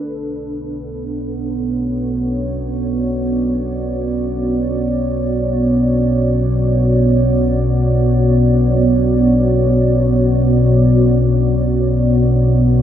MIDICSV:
0, 0, Header, 1, 3, 480
1, 0, Start_track
1, 0, Key_signature, 2, "minor"
1, 0, Tempo, 500000
1, 12308, End_track
2, 0, Start_track
2, 0, Title_t, "Ambient pad"
2, 0, Program_c, 0, 92
2, 0, Note_on_c, 0, 59, 76
2, 0, Note_on_c, 0, 62, 72
2, 0, Note_on_c, 0, 69, 69
2, 0, Note_on_c, 0, 71, 55
2, 691, Note_on_c, 0, 73, 80
2, 1298, Note_on_c, 0, 66, 62
2, 1916, Note_on_c, 0, 74, 79
2, 2019, Note_off_c, 0, 62, 0
2, 2383, Note_off_c, 0, 71, 0
2, 2401, Note_off_c, 0, 69, 0
2, 12308, Note_off_c, 0, 59, 0
2, 12308, Note_off_c, 0, 66, 0
2, 12308, Note_off_c, 0, 73, 0
2, 12308, Note_off_c, 0, 74, 0
2, 12308, End_track
3, 0, Start_track
3, 0, Title_t, "Synth drone"
3, 0, Program_c, 1, 95
3, 0, Note_on_c, 1, 35, 68
3, 0, Note_on_c, 1, 47, 67
3, 12308, Note_off_c, 1, 35, 0
3, 12308, Note_off_c, 1, 47, 0
3, 12308, End_track
0, 0, End_of_file